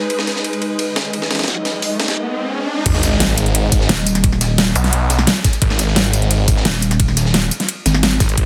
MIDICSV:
0, 0, Header, 1, 8, 480
1, 0, Start_track
1, 0, Key_signature, 5, "minor"
1, 0, Tempo, 344828
1, 139, Time_signature, 4, 2, 24, 8
1, 11772, End_track
2, 0, Start_track
2, 0, Title_t, "Ambient pad"
2, 0, Program_c, 0, 92
2, 0, Note_on_c, 0, 63, 72
2, 0, Note_on_c, 0, 71, 91
2, 0, Note_on_c, 0, 80, 73
2, 3019, Note_off_c, 0, 63, 0
2, 3019, Note_off_c, 0, 71, 0
2, 3019, Note_off_c, 0, 80, 0
2, 11772, End_track
3, 0, Start_track
3, 0, Title_t, "Synth drone"
3, 0, Program_c, 1, 95
3, 0, Note_on_c, 1, 56, 81
3, 0, Note_on_c, 1, 63, 75
3, 0, Note_on_c, 1, 68, 72
3, 139, Note_on_c, 1, 75, 90
3, 3923, Note_off_c, 1, 56, 0
3, 3923, Note_off_c, 1, 63, 0
3, 3923, Note_off_c, 1, 68, 0
3, 3964, Note_off_c, 1, 75, 0
3, 11772, End_track
4, 0, Start_track
4, 0, Title_t, "Detuned saw bass"
4, 0, Program_c, 2, 39
4, 3978, Note_on_c, 2, 32, 100
4, 5159, Note_off_c, 2, 32, 0
4, 5179, Note_on_c, 2, 32, 97
4, 5399, Note_off_c, 2, 32, 0
4, 6618, Note_on_c, 2, 35, 98
4, 7319, Note_off_c, 2, 35, 0
4, 7819, Note_on_c, 2, 32, 99
4, 9000, Note_off_c, 2, 32, 0
4, 9019, Note_on_c, 2, 32, 101
4, 9240, Note_off_c, 2, 32, 0
4, 11418, Note_on_c, 2, 32, 99
4, 11639, Note_off_c, 2, 32, 0
4, 11658, Note_on_c, 2, 32, 100
4, 11772, Note_off_c, 2, 32, 0
4, 11772, End_track
5, 0, Start_track
5, 0, Title_t, "Wobble bass"
5, 0, Program_c, 3, 39
5, 5418, Note_on_c, 3, 27, 97
5, 6599, Note_off_c, 3, 27, 0
5, 9258, Note_on_c, 3, 27, 97
5, 10439, Note_off_c, 3, 27, 0
5, 10938, Note_on_c, 3, 32, 102
5, 11399, Note_off_c, 3, 32, 0
5, 11772, End_track
6, 0, Start_track
6, 0, Title_t, "Riser"
6, 0, Program_c, 4, 103
6, 139, Note_on_c, 4, 60, 76
6, 3979, Note_off_c, 4, 60, 0
6, 11772, End_track
7, 0, Start_track
7, 0, Title_t, "Sub drop"
7, 0, Program_c, 5, 103
7, 3979, Note_on_c, 5, 60, 76
7, 5899, Note_off_c, 5, 60, 0
7, 11772, End_track
8, 0, Start_track
8, 0, Title_t, "Drums"
8, 139, Note_on_c, 9, 51, 83
8, 259, Note_on_c, 9, 38, 59
8, 278, Note_off_c, 9, 51, 0
8, 379, Note_off_c, 9, 38, 0
8, 379, Note_on_c, 9, 38, 42
8, 379, Note_on_c, 9, 51, 67
8, 498, Note_off_c, 9, 38, 0
8, 498, Note_on_c, 9, 38, 39
8, 518, Note_off_c, 9, 51, 0
8, 619, Note_on_c, 9, 51, 85
8, 638, Note_off_c, 9, 38, 0
8, 738, Note_off_c, 9, 51, 0
8, 738, Note_on_c, 9, 51, 42
8, 859, Note_off_c, 9, 51, 0
8, 859, Note_on_c, 9, 51, 65
8, 998, Note_off_c, 9, 51, 0
8, 1098, Note_on_c, 9, 51, 85
8, 1238, Note_off_c, 9, 51, 0
8, 1339, Note_on_c, 9, 38, 102
8, 1339, Note_on_c, 9, 51, 78
8, 1459, Note_off_c, 9, 51, 0
8, 1459, Note_on_c, 9, 51, 38
8, 1478, Note_off_c, 9, 38, 0
8, 1579, Note_off_c, 9, 51, 0
8, 1579, Note_on_c, 9, 51, 86
8, 1699, Note_on_c, 9, 38, 49
8, 1718, Note_off_c, 9, 51, 0
8, 1819, Note_off_c, 9, 38, 0
8, 1819, Note_on_c, 9, 38, 86
8, 1819, Note_on_c, 9, 51, 66
8, 1879, Note_off_c, 9, 38, 0
8, 1879, Note_off_c, 9, 51, 0
8, 1879, Note_on_c, 9, 38, 85
8, 1879, Note_on_c, 9, 51, 67
8, 1939, Note_off_c, 9, 38, 0
8, 1939, Note_off_c, 9, 51, 0
8, 1939, Note_on_c, 9, 38, 87
8, 1939, Note_on_c, 9, 51, 65
8, 1998, Note_off_c, 9, 38, 0
8, 1998, Note_off_c, 9, 51, 0
8, 1998, Note_on_c, 9, 38, 87
8, 1998, Note_on_c, 9, 51, 65
8, 2058, Note_off_c, 9, 38, 0
8, 2058, Note_off_c, 9, 51, 0
8, 2058, Note_on_c, 9, 38, 99
8, 2058, Note_on_c, 9, 51, 75
8, 2197, Note_off_c, 9, 38, 0
8, 2197, Note_off_c, 9, 51, 0
8, 2298, Note_on_c, 9, 38, 41
8, 2298, Note_on_c, 9, 51, 67
8, 2438, Note_off_c, 9, 38, 0
8, 2438, Note_off_c, 9, 51, 0
8, 2538, Note_on_c, 9, 46, 80
8, 2678, Note_off_c, 9, 46, 0
8, 2778, Note_on_c, 9, 38, 102
8, 2778, Note_on_c, 9, 51, 76
8, 2898, Note_off_c, 9, 38, 0
8, 2898, Note_off_c, 9, 51, 0
8, 2898, Note_on_c, 9, 38, 104
8, 2898, Note_on_c, 9, 51, 80
8, 3038, Note_off_c, 9, 38, 0
8, 3038, Note_off_c, 9, 51, 0
8, 3978, Note_on_c, 9, 36, 125
8, 3979, Note_on_c, 9, 42, 97
8, 3979, Note_on_c, 9, 49, 106
8, 3979, Note_on_c, 9, 51, 86
8, 4099, Note_on_c, 9, 38, 61
8, 4099, Note_on_c, 9, 40, 35
8, 4118, Note_off_c, 9, 36, 0
8, 4118, Note_off_c, 9, 42, 0
8, 4118, Note_off_c, 9, 49, 0
8, 4118, Note_off_c, 9, 51, 0
8, 4219, Note_off_c, 9, 38, 0
8, 4219, Note_on_c, 9, 38, 42
8, 4219, Note_on_c, 9, 42, 70
8, 4219, Note_on_c, 9, 51, 71
8, 4219, Note_on_c, 9, 54, 62
8, 4238, Note_off_c, 9, 40, 0
8, 4339, Note_off_c, 9, 38, 0
8, 4339, Note_on_c, 9, 38, 43
8, 4358, Note_off_c, 9, 42, 0
8, 4358, Note_off_c, 9, 51, 0
8, 4358, Note_off_c, 9, 54, 0
8, 4459, Note_off_c, 9, 38, 0
8, 4459, Note_on_c, 9, 38, 122
8, 4459, Note_on_c, 9, 42, 101
8, 4459, Note_on_c, 9, 51, 89
8, 4579, Note_off_c, 9, 51, 0
8, 4579, Note_on_c, 9, 51, 44
8, 4598, Note_off_c, 9, 38, 0
8, 4598, Note_off_c, 9, 42, 0
8, 4699, Note_off_c, 9, 51, 0
8, 4699, Note_on_c, 9, 42, 71
8, 4699, Note_on_c, 9, 51, 70
8, 4699, Note_on_c, 9, 54, 60
8, 4819, Note_off_c, 9, 42, 0
8, 4819, Note_on_c, 9, 42, 39
8, 4838, Note_off_c, 9, 51, 0
8, 4838, Note_off_c, 9, 54, 0
8, 4939, Note_off_c, 9, 42, 0
8, 4939, Note_on_c, 9, 42, 99
8, 4939, Note_on_c, 9, 51, 91
8, 5078, Note_off_c, 9, 42, 0
8, 5078, Note_off_c, 9, 51, 0
8, 5179, Note_on_c, 9, 36, 104
8, 5179, Note_on_c, 9, 42, 72
8, 5179, Note_on_c, 9, 51, 71
8, 5179, Note_on_c, 9, 54, 62
8, 5299, Note_on_c, 9, 38, 38
8, 5318, Note_off_c, 9, 36, 0
8, 5318, Note_off_c, 9, 42, 0
8, 5318, Note_off_c, 9, 51, 0
8, 5318, Note_off_c, 9, 54, 0
8, 5418, Note_off_c, 9, 38, 0
8, 5418, Note_on_c, 9, 38, 115
8, 5418, Note_on_c, 9, 51, 90
8, 5419, Note_off_c, 9, 38, 0
8, 5419, Note_on_c, 9, 38, 125
8, 5419, Note_on_c, 9, 42, 101
8, 5539, Note_off_c, 9, 38, 0
8, 5539, Note_on_c, 9, 38, 50
8, 5557, Note_off_c, 9, 51, 0
8, 5558, Note_off_c, 9, 42, 0
8, 5658, Note_on_c, 9, 51, 71
8, 5659, Note_on_c, 9, 42, 71
8, 5659, Note_on_c, 9, 54, 63
8, 5678, Note_off_c, 9, 38, 0
8, 5779, Note_off_c, 9, 42, 0
8, 5779, Note_off_c, 9, 54, 0
8, 5779, Note_on_c, 9, 40, 36
8, 5779, Note_on_c, 9, 42, 39
8, 5779, Note_on_c, 9, 54, 27
8, 5798, Note_off_c, 9, 51, 0
8, 5898, Note_on_c, 9, 36, 127
8, 5898, Note_on_c, 9, 51, 89
8, 5899, Note_off_c, 9, 42, 0
8, 5899, Note_on_c, 9, 42, 94
8, 5918, Note_off_c, 9, 40, 0
8, 5918, Note_off_c, 9, 54, 0
8, 6019, Note_on_c, 9, 40, 36
8, 6038, Note_off_c, 9, 36, 0
8, 6038, Note_off_c, 9, 42, 0
8, 6038, Note_off_c, 9, 51, 0
8, 6139, Note_on_c, 9, 38, 44
8, 6139, Note_on_c, 9, 42, 68
8, 6139, Note_on_c, 9, 51, 71
8, 6139, Note_on_c, 9, 54, 59
8, 6158, Note_off_c, 9, 40, 0
8, 6278, Note_off_c, 9, 38, 0
8, 6278, Note_off_c, 9, 42, 0
8, 6278, Note_off_c, 9, 51, 0
8, 6278, Note_off_c, 9, 54, 0
8, 6378, Note_on_c, 9, 38, 120
8, 6378, Note_on_c, 9, 46, 80
8, 6379, Note_off_c, 9, 38, 0
8, 6379, Note_on_c, 9, 38, 127
8, 6379, Note_on_c, 9, 42, 95
8, 6517, Note_off_c, 9, 46, 0
8, 6518, Note_off_c, 9, 38, 0
8, 6518, Note_off_c, 9, 42, 0
8, 6618, Note_on_c, 9, 51, 70
8, 6619, Note_on_c, 9, 46, 80
8, 6619, Note_on_c, 9, 54, 59
8, 6738, Note_off_c, 9, 51, 0
8, 6738, Note_on_c, 9, 51, 46
8, 6739, Note_on_c, 9, 38, 39
8, 6739, Note_on_c, 9, 42, 38
8, 6758, Note_off_c, 9, 46, 0
8, 6758, Note_off_c, 9, 54, 0
8, 6859, Note_off_c, 9, 42, 0
8, 6859, Note_off_c, 9, 51, 0
8, 6859, Note_on_c, 9, 42, 95
8, 6859, Note_on_c, 9, 51, 92
8, 6878, Note_off_c, 9, 38, 0
8, 6998, Note_off_c, 9, 42, 0
8, 6998, Note_off_c, 9, 51, 0
8, 7099, Note_on_c, 9, 38, 42
8, 7099, Note_on_c, 9, 42, 71
8, 7099, Note_on_c, 9, 51, 70
8, 7099, Note_on_c, 9, 54, 60
8, 7219, Note_on_c, 9, 40, 59
8, 7238, Note_off_c, 9, 38, 0
8, 7238, Note_off_c, 9, 42, 0
8, 7238, Note_off_c, 9, 51, 0
8, 7238, Note_off_c, 9, 54, 0
8, 7338, Note_on_c, 9, 38, 121
8, 7338, Note_on_c, 9, 51, 91
8, 7339, Note_off_c, 9, 38, 0
8, 7339, Note_on_c, 9, 38, 127
8, 7339, Note_on_c, 9, 42, 99
8, 7358, Note_off_c, 9, 40, 0
8, 7477, Note_off_c, 9, 51, 0
8, 7478, Note_off_c, 9, 38, 0
8, 7478, Note_off_c, 9, 42, 0
8, 7578, Note_on_c, 9, 38, 58
8, 7578, Note_on_c, 9, 51, 69
8, 7579, Note_on_c, 9, 36, 111
8, 7579, Note_on_c, 9, 42, 71
8, 7579, Note_on_c, 9, 54, 60
8, 7699, Note_off_c, 9, 42, 0
8, 7699, Note_off_c, 9, 54, 0
8, 7699, Note_on_c, 9, 42, 38
8, 7699, Note_on_c, 9, 54, 27
8, 7718, Note_off_c, 9, 36, 0
8, 7718, Note_off_c, 9, 38, 0
8, 7718, Note_off_c, 9, 51, 0
8, 7818, Note_on_c, 9, 51, 87
8, 7819, Note_off_c, 9, 42, 0
8, 7819, Note_on_c, 9, 36, 127
8, 7819, Note_on_c, 9, 42, 92
8, 7838, Note_off_c, 9, 54, 0
8, 7939, Note_on_c, 9, 38, 62
8, 7939, Note_on_c, 9, 40, 34
8, 7958, Note_off_c, 9, 36, 0
8, 7958, Note_off_c, 9, 42, 0
8, 7958, Note_off_c, 9, 51, 0
8, 8059, Note_off_c, 9, 38, 0
8, 8059, Note_on_c, 9, 38, 42
8, 8059, Note_on_c, 9, 42, 66
8, 8059, Note_on_c, 9, 51, 71
8, 8059, Note_on_c, 9, 54, 58
8, 8078, Note_off_c, 9, 40, 0
8, 8178, Note_off_c, 9, 38, 0
8, 8178, Note_on_c, 9, 38, 43
8, 8198, Note_off_c, 9, 42, 0
8, 8198, Note_off_c, 9, 51, 0
8, 8198, Note_off_c, 9, 54, 0
8, 8298, Note_off_c, 9, 38, 0
8, 8298, Note_on_c, 9, 38, 119
8, 8298, Note_on_c, 9, 51, 88
8, 8299, Note_off_c, 9, 38, 0
8, 8299, Note_on_c, 9, 38, 127
8, 8299, Note_on_c, 9, 42, 91
8, 8418, Note_off_c, 9, 51, 0
8, 8418, Note_on_c, 9, 51, 46
8, 8438, Note_off_c, 9, 38, 0
8, 8438, Note_off_c, 9, 42, 0
8, 8538, Note_off_c, 9, 51, 0
8, 8538, Note_on_c, 9, 51, 69
8, 8539, Note_on_c, 9, 42, 65
8, 8539, Note_on_c, 9, 54, 58
8, 8659, Note_off_c, 9, 42, 0
8, 8659, Note_on_c, 9, 42, 38
8, 8678, Note_off_c, 9, 51, 0
8, 8678, Note_off_c, 9, 54, 0
8, 8778, Note_on_c, 9, 51, 92
8, 8779, Note_off_c, 9, 42, 0
8, 8779, Note_on_c, 9, 42, 90
8, 8918, Note_off_c, 9, 42, 0
8, 8918, Note_off_c, 9, 51, 0
8, 9019, Note_on_c, 9, 36, 113
8, 9019, Note_on_c, 9, 42, 67
8, 9019, Note_on_c, 9, 51, 69
8, 9019, Note_on_c, 9, 54, 58
8, 9139, Note_on_c, 9, 38, 39
8, 9158, Note_off_c, 9, 36, 0
8, 9158, Note_off_c, 9, 42, 0
8, 9158, Note_off_c, 9, 51, 0
8, 9158, Note_off_c, 9, 54, 0
8, 9258, Note_off_c, 9, 38, 0
8, 9258, Note_on_c, 9, 38, 127
8, 9258, Note_on_c, 9, 42, 97
8, 9258, Note_on_c, 9, 51, 92
8, 9379, Note_off_c, 9, 38, 0
8, 9379, Note_on_c, 9, 38, 52
8, 9398, Note_off_c, 9, 42, 0
8, 9398, Note_off_c, 9, 51, 0
8, 9499, Note_on_c, 9, 42, 66
8, 9499, Note_on_c, 9, 51, 72
8, 9499, Note_on_c, 9, 54, 58
8, 9518, Note_off_c, 9, 38, 0
8, 9619, Note_off_c, 9, 42, 0
8, 9619, Note_off_c, 9, 54, 0
8, 9619, Note_on_c, 9, 40, 34
8, 9619, Note_on_c, 9, 42, 36
8, 9619, Note_on_c, 9, 54, 27
8, 9638, Note_off_c, 9, 51, 0
8, 9739, Note_off_c, 9, 42, 0
8, 9739, Note_on_c, 9, 36, 127
8, 9739, Note_on_c, 9, 42, 93
8, 9739, Note_on_c, 9, 51, 88
8, 9758, Note_off_c, 9, 40, 0
8, 9758, Note_off_c, 9, 54, 0
8, 9859, Note_on_c, 9, 40, 33
8, 9878, Note_off_c, 9, 36, 0
8, 9878, Note_off_c, 9, 42, 0
8, 9878, Note_off_c, 9, 51, 0
8, 9979, Note_on_c, 9, 38, 38
8, 9979, Note_on_c, 9, 42, 64
8, 9979, Note_on_c, 9, 51, 65
8, 9979, Note_on_c, 9, 54, 61
8, 9998, Note_off_c, 9, 40, 0
8, 10099, Note_off_c, 9, 38, 0
8, 10099, Note_on_c, 9, 38, 38
8, 10118, Note_off_c, 9, 42, 0
8, 10118, Note_off_c, 9, 51, 0
8, 10118, Note_off_c, 9, 54, 0
8, 10218, Note_off_c, 9, 38, 0
8, 10218, Note_on_c, 9, 38, 107
8, 10218, Note_on_c, 9, 51, 83
8, 10219, Note_off_c, 9, 38, 0
8, 10219, Note_on_c, 9, 38, 123
8, 10219, Note_on_c, 9, 42, 91
8, 10338, Note_off_c, 9, 51, 0
8, 10338, Note_on_c, 9, 51, 40
8, 10358, Note_off_c, 9, 38, 0
8, 10358, Note_off_c, 9, 42, 0
8, 10458, Note_off_c, 9, 51, 0
8, 10458, Note_on_c, 9, 51, 64
8, 10459, Note_on_c, 9, 46, 84
8, 10459, Note_on_c, 9, 54, 60
8, 10578, Note_on_c, 9, 38, 39
8, 10578, Note_on_c, 9, 42, 36
8, 10597, Note_off_c, 9, 51, 0
8, 10598, Note_off_c, 9, 46, 0
8, 10598, Note_off_c, 9, 54, 0
8, 10698, Note_on_c, 9, 51, 91
8, 10699, Note_off_c, 9, 42, 0
8, 10699, Note_on_c, 9, 42, 90
8, 10718, Note_off_c, 9, 38, 0
8, 10837, Note_off_c, 9, 51, 0
8, 10838, Note_off_c, 9, 42, 0
8, 10938, Note_on_c, 9, 38, 44
8, 10938, Note_on_c, 9, 51, 71
8, 10939, Note_on_c, 9, 42, 65
8, 10939, Note_on_c, 9, 54, 59
8, 11059, Note_on_c, 9, 40, 56
8, 11077, Note_off_c, 9, 38, 0
8, 11077, Note_off_c, 9, 51, 0
8, 11078, Note_off_c, 9, 42, 0
8, 11078, Note_off_c, 9, 54, 0
8, 11178, Note_on_c, 9, 38, 120
8, 11178, Note_on_c, 9, 51, 87
8, 11179, Note_off_c, 9, 38, 0
8, 11179, Note_on_c, 9, 38, 127
8, 11179, Note_on_c, 9, 42, 90
8, 11198, Note_off_c, 9, 40, 0
8, 11318, Note_off_c, 9, 38, 0
8, 11318, Note_off_c, 9, 42, 0
8, 11318, Note_off_c, 9, 51, 0
8, 11418, Note_on_c, 9, 36, 108
8, 11419, Note_on_c, 9, 38, 57
8, 11419, Note_on_c, 9, 42, 66
8, 11419, Note_on_c, 9, 51, 71
8, 11419, Note_on_c, 9, 54, 60
8, 11539, Note_off_c, 9, 42, 0
8, 11539, Note_off_c, 9, 54, 0
8, 11539, Note_on_c, 9, 42, 36
8, 11539, Note_on_c, 9, 54, 27
8, 11558, Note_off_c, 9, 36, 0
8, 11558, Note_off_c, 9, 38, 0
8, 11558, Note_off_c, 9, 51, 0
8, 11658, Note_on_c, 9, 36, 124
8, 11659, Note_off_c, 9, 42, 0
8, 11659, Note_on_c, 9, 42, 92
8, 11659, Note_on_c, 9, 51, 90
8, 11678, Note_off_c, 9, 54, 0
8, 11772, Note_off_c, 9, 36, 0
8, 11772, Note_off_c, 9, 42, 0
8, 11772, Note_off_c, 9, 51, 0
8, 11772, End_track
0, 0, End_of_file